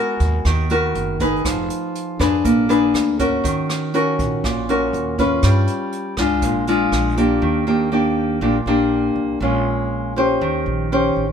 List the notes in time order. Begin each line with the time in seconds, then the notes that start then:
Already playing: G#3 B3 F#4 A#4
0.20 D#2, kick, closed hi-hat
0.45 D#2 D#3, kick, cross-stick, closed hi-hat
0.69 B3 F#4 A#4, closed hi-hat
0.95 F#1, closed hi-hat
1.20 D#4 G#4 B4, kick, closed hi-hat
1.45 F1 F3, kick, cross-stick, closed hi-hat
1.70 closed hi-hat
1.95 closed hi-hat
2.19 F2 D4 G#4 B4, kick, cross-stick, closed hi-hat
2.45 A#1 A#3, kick, closed hi-hat
2.69 D4 G#4 B4, closed hi-hat
2.94 D2, cross-stick, closed hi-hat
3.19 C#4 F#4 A#4, kick, closed hi-hat
3.44 D#2 D#3, kick, closed hi-hat
3.70 cross-stick, closed hi-hat
3.94 C#4 F#4 A#4, closed hi-hat
4.19 A#1, kick, closed hi-hat
4.44 A#1 A#2, kick, cross-stick, closed hi-hat
4.69 C#4 F#4 A#4, closed hi-hat
4.93 D#2, closed hi-hat
5.18 C#4 F4 B4, kick, closed hi-hat
5.43 G2 G3, kick, cross-stick, closed hi-hat
5.67 closed hi-hat
5.92 closed hi-hat
6.17 D2 G#3 D4 F4, kick, cross-stick, closed hi-hat
6.42 A#1 A#2, kick, closed hi-hat
6.67 G#3 D4 F4, closed hi-hat
6.92 A#1, cross-stick, closed hi-hat
7.17 A#3 D4 G4, closed hi-hat
7.42 D#2 D#3
7.67 A#3 D4 G4
7.92 A#3 D4 G4
8.41 A#1 A#2 A#3 D4 G4
8.66 A#1 A#3 D4 G4
9.16 C2
9.41 A#1 A#2 G#3 C#4 F4
10.16 C#4 G4 C5
10.41 D#2 D#3
10.66 A#1
10.92 C#4 G4 C5
11.16 A1